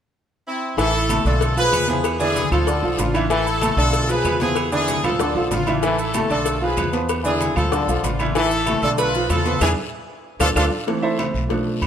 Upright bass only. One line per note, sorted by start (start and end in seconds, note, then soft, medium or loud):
0.77 1.22 A1 medium
1.25 1.69 B1 medium
1.72 2.46 E2 loud
2.51 2.81 D2 medium
2.83 2.98 B1 medium
2.99 3.72 A1 loud
3.77 4.21 B1 loud
4.24 4.98 E2 medium
5.03 5.33 D2 medium
5.35 5.50 B1 medium
5.51 6.24 A1 medium
6.30 6.74 B1 medium
6.77 7.51 E2 loud
7.56 7.85 D2 medium
7.88 8.02 B1 medium
8.03 8.77 A1 medium
8.82 9.26 B1 medium
9.30 9.59 E2 loud
9.61 9.73 E2 medium
10.40 10.52 D2 medium
10.56 10.68 D2 loud
11.34 11.79 B1 medium
11.81 11.87 E2 loud